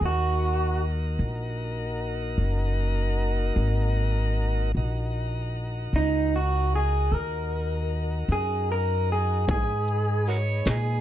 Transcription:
0.01 upright bass D#2, tonewheel organ A#3 D#4 F#4 A#4
0.06 clean electric guitar F#4
1.19 upright bass A#1
2.38 upright bass F#1
3.56 upright bass G#1
4.75 upright bass A#1, tonewheel organ D#4 F#4 A#4
5.93 upright bass C#2, clean electric guitar D#4
6.36 clean electric guitar F#4
6.76 clean electric guitar G#4
7.12 upright bass D#2, clean electric guitar A#4
8.28 upright bass F#2, clean electric guitar G#4
8.72 clean electric guitar A#4
9.12 clean electric guitar G#4
9.47 upright bass G#2, tonewheel organ G#3 D#4 B4, kick, closed hi-hat
9.51 clean electric guitar G#4
9.88 closed hi-hat
10.27 harmonica F#4 A#4 C#5, closed hi-hat
10.65 upright bass A#2, harmonica D#4 G#4, snare, closed hi-hat

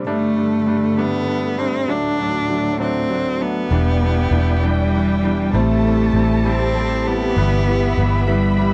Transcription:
0.04 string section G2 D3 A3, upright piano G3 A3 D4, cello A3
0.37 upright piano G3 A3 D4
0.66 upright piano G3 A3 D4
0.97 upright piano G3 A3 D4, cello B3
1.28 upright piano G3 A3 D4
1.58 upright piano G3 A3 D4, cello C4
1.87 string section D2 A2 F#3, upright piano F#3 A3 D4, cello D4
2.19 upright piano F#3 A3 D4
2.49 upright piano F#3 A3 D4
2.79 upright piano F#3 A3 D4, cello C4
3.10 upright piano F#3 A3 D4
3.40 upright piano F#3 A3 D4, cello B3
3.70 fingered electric bass E1, steel-string acoustic guitar E3 G3 B3 D4 G4, upright piano E3 G3 D4, string section E4 D5 G5
4.00 upright piano E3 G3 D4, steel-string acoustic guitar B3 D4 G4
4.31 fingered electric bass E1, upright piano E3 G3 D4, steel-string acoustic guitar G3 B3 D4 G4
4.61 upright piano E3 G3 D4, steel-string acoustic guitar E3 G3 B3 D4 G4, cello G3
4.92 upright piano E3 G3 D4, steel-string acoustic guitar G3 B3 D4 G4
5.22 upright piano E3 G3 D4, steel-string acoustic guitar B3 D4 G4
5.53 fingered electric bass A1, upright piano G3 A3 C4, steel-string acoustic guitar A3 C4 E4 G4, cello A3, string section G4 A4 A5
5.84 upright piano G3 A3 C4, steel-string acoustic guitar C4 E4 G4
6.13 fingered electric bass A1, upright piano G3 A3 C4, steel-string acoustic guitar A3 C4 E4 G4
6.44 upright piano G3 A3 C4, steel-string acoustic guitar A3 C4 E4 G4, cello C4
6.75 upright piano G3 A3 C4, steel-string acoustic guitar A3 C4 E4 G4
7.06 upright piano G3 A3 C4, cello B3, steel-string acoustic guitar E4 G4
7.36 fingered electric bass G1, steel-string acoustic guitar G2 D3 G3 B3 E4 G4, upright piano E3 G3 B3, string section E5 B5
7.66 upright piano E3 G3 B3, steel-string acoustic guitar G3 B3 E4 G4
7.96 fingered electric bass G1, upright piano E3 G3 B3, steel-string acoustic guitar G3 B3 E4 G4
8.27 steel-string acoustic guitar G2 D3 G3 B3 E4 G4, upright piano E3 G3 B3, cello G3
8.57 upright piano E3 G3 B3, steel-string acoustic guitar G3 B3 E4 G4

